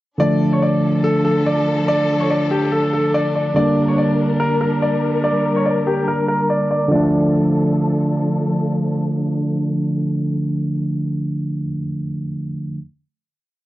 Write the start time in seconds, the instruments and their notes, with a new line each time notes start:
0.18 tine electric piano D3 F3 A3 D4, string section F3 D4 A4, grand piano D5
0.53 grand piano C#5
0.62 grand piano D5
1.04 grand piano A4
1.25 grand piano A4
1.46 grand piano D5
1.88 grand piano D5
2.20 grand piano C#5
2.30 grand piano D5
2.51 grand piano G4
2.72 grand piano A4
2.93 grand piano A4
3.14 grand piano D5
3.35 grand piano D5
3.54 tine electric piano D3 G3 A#3 D4, string section G3 A#4, grand piano D5
3.88 grand piano C#5
3.98 grand piano D5
4.40 grand piano A#4
4.61 grand piano A#4
4.82 grand piano D5
5.24 grand piano D5
5.56 grand piano C#5
5.66 grand piano D5
5.87 grand piano G4
6.08 grand piano A#4
6.28 grand piano A#4
6.50 grand piano D5
6.71 grand piano D5
6.88 tine electric piano D3 F3, string section F3 D4 A4, grand piano D5
6.93 tine electric piano A3 D4